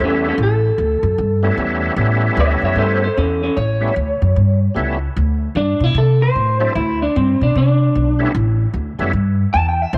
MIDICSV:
0, 0, Header, 1, 4, 480
1, 0, Start_track
1, 0, Tempo, 397351
1, 474, Time_signature, 4, 2, 24, 8
1, 12055, End_track
2, 0, Start_track
2, 0, Title_t, "Clean electric guitar"
2, 0, Program_c, 0, 27
2, 49, Note_on_c, 0, 69, 78
2, 59, Note_on_c, 0, 61, 66
2, 314, Note_off_c, 0, 61, 0
2, 320, Note_off_c, 0, 69, 0
2, 345, Note_on_c, 0, 61, 57
2, 358, Note_on_c, 0, 69, 65
2, 485, Note_off_c, 0, 61, 0
2, 498, Note_off_c, 0, 69, 0
2, 522, Note_on_c, 0, 69, 79
2, 1894, Note_off_c, 0, 69, 0
2, 2896, Note_on_c, 0, 73, 72
2, 2905, Note_on_c, 0, 76, 74
2, 3186, Note_off_c, 0, 76, 0
2, 3187, Note_off_c, 0, 73, 0
2, 3199, Note_on_c, 0, 73, 68
2, 3203, Note_on_c, 0, 76, 61
2, 3351, Note_off_c, 0, 73, 0
2, 3357, Note_off_c, 0, 76, 0
2, 3360, Note_on_c, 0, 69, 77
2, 3372, Note_on_c, 0, 72, 83
2, 3642, Note_off_c, 0, 69, 0
2, 3655, Note_off_c, 0, 72, 0
2, 3671, Note_on_c, 0, 69, 65
2, 3675, Note_on_c, 0, 72, 67
2, 3827, Note_off_c, 0, 69, 0
2, 3832, Note_off_c, 0, 72, 0
2, 3837, Note_on_c, 0, 61, 67
2, 3848, Note_on_c, 0, 69, 76
2, 4120, Note_off_c, 0, 61, 0
2, 4137, Note_off_c, 0, 69, 0
2, 4149, Note_on_c, 0, 61, 71
2, 4157, Note_on_c, 0, 69, 65
2, 4305, Note_off_c, 0, 61, 0
2, 4307, Note_on_c, 0, 73, 79
2, 4314, Note_off_c, 0, 69, 0
2, 5704, Note_off_c, 0, 73, 0
2, 6727, Note_on_c, 0, 62, 93
2, 7050, Note_off_c, 0, 62, 0
2, 7050, Note_on_c, 0, 64, 84
2, 7201, Note_off_c, 0, 64, 0
2, 7225, Note_on_c, 0, 69, 85
2, 7505, Note_off_c, 0, 69, 0
2, 7516, Note_on_c, 0, 72, 104
2, 8139, Note_off_c, 0, 72, 0
2, 8159, Note_on_c, 0, 64, 84
2, 8452, Note_off_c, 0, 64, 0
2, 8484, Note_on_c, 0, 62, 74
2, 8638, Note_off_c, 0, 62, 0
2, 8653, Note_on_c, 0, 60, 80
2, 8939, Note_off_c, 0, 60, 0
2, 8974, Note_on_c, 0, 62, 85
2, 9123, Note_off_c, 0, 62, 0
2, 9153, Note_on_c, 0, 62, 109
2, 10063, Note_off_c, 0, 62, 0
2, 11522, Note_on_c, 0, 81, 109
2, 11672, Note_off_c, 0, 81, 0
2, 11700, Note_on_c, 0, 79, 75
2, 11861, Note_off_c, 0, 79, 0
2, 11861, Note_on_c, 0, 76, 84
2, 12002, Note_off_c, 0, 76, 0
2, 12008, Note_on_c, 0, 72, 74
2, 12055, Note_off_c, 0, 72, 0
2, 12055, End_track
3, 0, Start_track
3, 0, Title_t, "Tonewheel organ"
3, 0, Program_c, 1, 16
3, 0, Note_on_c, 1, 55, 64
3, 0, Note_on_c, 1, 57, 61
3, 0, Note_on_c, 1, 59, 59
3, 0, Note_on_c, 1, 61, 58
3, 0, Note_on_c, 1, 64, 69
3, 429, Note_off_c, 1, 55, 0
3, 430, Note_off_c, 1, 59, 0
3, 432, Note_off_c, 1, 57, 0
3, 435, Note_off_c, 1, 61, 0
3, 435, Note_off_c, 1, 64, 0
3, 1724, Note_on_c, 1, 57, 62
3, 1726, Note_on_c, 1, 55, 68
3, 1726, Note_on_c, 1, 59, 62
3, 1740, Note_on_c, 1, 61, 60
3, 1741, Note_on_c, 1, 64, 75
3, 2350, Note_off_c, 1, 57, 0
3, 2351, Note_off_c, 1, 55, 0
3, 2351, Note_off_c, 1, 59, 0
3, 2358, Note_off_c, 1, 61, 0
3, 2358, Note_off_c, 1, 64, 0
3, 2372, Note_on_c, 1, 55, 64
3, 2374, Note_on_c, 1, 57, 58
3, 2383, Note_on_c, 1, 59, 60
3, 2383, Note_on_c, 1, 64, 72
3, 2390, Note_on_c, 1, 61, 60
3, 3717, Note_off_c, 1, 55, 0
3, 3718, Note_off_c, 1, 57, 0
3, 3722, Note_off_c, 1, 59, 0
3, 3723, Note_off_c, 1, 64, 0
3, 3726, Note_off_c, 1, 61, 0
3, 4598, Note_on_c, 1, 55, 70
3, 4598, Note_on_c, 1, 57, 62
3, 4602, Note_on_c, 1, 59, 63
3, 4605, Note_on_c, 1, 61, 62
3, 4609, Note_on_c, 1, 64, 77
3, 4763, Note_off_c, 1, 55, 0
3, 4763, Note_off_c, 1, 57, 0
3, 4765, Note_off_c, 1, 59, 0
3, 4766, Note_off_c, 1, 61, 0
3, 4768, Note_off_c, 1, 64, 0
3, 5732, Note_on_c, 1, 55, 65
3, 5741, Note_on_c, 1, 57, 57
3, 5745, Note_on_c, 1, 59, 59
3, 5753, Note_on_c, 1, 61, 60
3, 5754, Note_on_c, 1, 64, 69
3, 6017, Note_off_c, 1, 55, 0
3, 6021, Note_off_c, 1, 57, 0
3, 6023, Note_off_c, 1, 59, 0
3, 6027, Note_off_c, 1, 61, 0
3, 6028, Note_off_c, 1, 64, 0
3, 7972, Note_on_c, 1, 54, 65
3, 7978, Note_on_c, 1, 57, 57
3, 7979, Note_on_c, 1, 60, 61
3, 7982, Note_on_c, 1, 62, 60
3, 7986, Note_on_c, 1, 64, 72
3, 8129, Note_off_c, 1, 54, 0
3, 8132, Note_off_c, 1, 57, 0
3, 8133, Note_off_c, 1, 60, 0
3, 8134, Note_off_c, 1, 62, 0
3, 8136, Note_off_c, 1, 64, 0
3, 9893, Note_on_c, 1, 55, 68
3, 9898, Note_on_c, 1, 59, 63
3, 9901, Note_on_c, 1, 57, 63
3, 9902, Note_on_c, 1, 61, 62
3, 9904, Note_on_c, 1, 64, 76
3, 10050, Note_off_c, 1, 55, 0
3, 10052, Note_off_c, 1, 59, 0
3, 10054, Note_off_c, 1, 57, 0
3, 10054, Note_off_c, 1, 61, 0
3, 10056, Note_off_c, 1, 64, 0
3, 10855, Note_on_c, 1, 55, 67
3, 10863, Note_on_c, 1, 57, 62
3, 10869, Note_on_c, 1, 59, 61
3, 10871, Note_on_c, 1, 61, 58
3, 10877, Note_on_c, 1, 64, 73
3, 11012, Note_off_c, 1, 55, 0
3, 11016, Note_off_c, 1, 57, 0
3, 11019, Note_off_c, 1, 59, 0
3, 11020, Note_off_c, 1, 61, 0
3, 11023, Note_off_c, 1, 64, 0
3, 12055, End_track
4, 0, Start_track
4, 0, Title_t, "Upright bass"
4, 0, Program_c, 2, 32
4, 0, Note_on_c, 2, 40, 79
4, 361, Note_off_c, 2, 40, 0
4, 457, Note_on_c, 2, 33, 92
4, 830, Note_off_c, 2, 33, 0
4, 943, Note_on_c, 2, 38, 82
4, 1182, Note_off_c, 2, 38, 0
4, 1242, Note_on_c, 2, 42, 82
4, 1381, Note_off_c, 2, 42, 0
4, 1429, Note_on_c, 2, 43, 87
4, 1797, Note_off_c, 2, 43, 0
4, 1902, Note_on_c, 2, 40, 82
4, 2273, Note_off_c, 2, 40, 0
4, 2373, Note_on_c, 2, 33, 91
4, 2747, Note_off_c, 2, 33, 0
4, 2862, Note_on_c, 2, 38, 89
4, 3100, Note_off_c, 2, 38, 0
4, 3164, Note_on_c, 2, 42, 77
4, 3302, Note_off_c, 2, 42, 0
4, 3327, Note_on_c, 2, 43, 81
4, 3703, Note_off_c, 2, 43, 0
4, 3834, Note_on_c, 2, 40, 81
4, 4200, Note_off_c, 2, 40, 0
4, 4311, Note_on_c, 2, 33, 86
4, 4678, Note_off_c, 2, 33, 0
4, 4784, Note_on_c, 2, 38, 83
4, 5021, Note_off_c, 2, 38, 0
4, 5094, Note_on_c, 2, 42, 80
4, 5227, Note_off_c, 2, 42, 0
4, 5270, Note_on_c, 2, 43, 87
4, 5637, Note_off_c, 2, 43, 0
4, 5750, Note_on_c, 2, 37, 82
4, 6116, Note_off_c, 2, 37, 0
4, 6239, Note_on_c, 2, 38, 90
4, 6602, Note_off_c, 2, 38, 0
4, 6705, Note_on_c, 2, 43, 80
4, 6941, Note_off_c, 2, 43, 0
4, 7010, Note_on_c, 2, 47, 80
4, 7144, Note_off_c, 2, 47, 0
4, 7182, Note_on_c, 2, 48, 88
4, 7552, Note_off_c, 2, 48, 0
4, 7678, Note_on_c, 2, 45, 78
4, 8041, Note_off_c, 2, 45, 0
4, 8158, Note_on_c, 2, 38, 88
4, 8522, Note_off_c, 2, 38, 0
4, 8650, Note_on_c, 2, 43, 88
4, 8877, Note_off_c, 2, 43, 0
4, 8955, Note_on_c, 2, 47, 82
4, 9079, Note_off_c, 2, 47, 0
4, 9126, Note_on_c, 2, 48, 87
4, 9486, Note_off_c, 2, 48, 0
4, 9608, Note_on_c, 2, 35, 82
4, 9968, Note_off_c, 2, 35, 0
4, 10081, Note_on_c, 2, 33, 96
4, 10444, Note_off_c, 2, 33, 0
4, 10553, Note_on_c, 2, 38, 86
4, 10787, Note_off_c, 2, 38, 0
4, 10860, Note_on_c, 2, 42, 84
4, 10991, Note_off_c, 2, 42, 0
4, 11031, Note_on_c, 2, 43, 83
4, 11399, Note_off_c, 2, 43, 0
4, 11526, Note_on_c, 2, 40, 81
4, 11888, Note_off_c, 2, 40, 0
4, 11995, Note_on_c, 2, 33, 95
4, 12055, Note_off_c, 2, 33, 0
4, 12055, End_track
0, 0, End_of_file